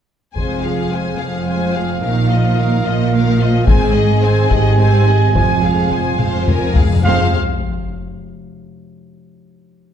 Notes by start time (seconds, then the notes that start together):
0.35 F1 F2 F3 G#3 C4 G#4 C5 F5 G#5, taiko
0.63 F3 F5
0.67 G#4
0.92 G#3 C5 G#5
1.19 F1 F2 F3 C4 G#4 F5
1.47 G#3 C5 G#5
1.74 F3 G#4 F5
2.01 A#1 A#2 D#3 A#3 D#4 A#4 F5
2.30 F3 F4 D#5
2.58 D#3 A#4 F5
2.84 A#1 A#2 F3 F4 D#5
3.12 D#3 A#4 F5
3.40 F3 F4 D#5
3.66 G#1 G#2 D#3 C4 G#4 C5 G#5, taiko
3.93 G#3 G#4 D#5
4.21 C4 C5 G#5
4.49 G#1 G#2 G#3 G4 G#4 D#5, taiko
4.78 C4 C5 G#5
5.06 G#3 G#4 D#5
5.34 F1 F2 F3 F4 C5 G#5, taiko, reverse cymbal
5.58 F2 G#4
5.63 F2 G#3 F5
5.74 F2
5.81 F2
5.89 F2 F3 C5 G#5, taiko low-mid
5.97 F2
6.04 F2
6.12 F2
6.19 F1 F2 G#3 C5 F5, taiko mid
6.28 F2
6.36 F2
6.44 F2 F3 G#5
6.48 F2 A#4, taiko low-mid
6.59 F2
6.66 F2
6.73 F2 G#3 G#4 F5, taiko low
6.81 F2
6.88 F2
6.96 F2
7.04 F1 F2 F3 G#3 C4 F4 C5 F5, sub drop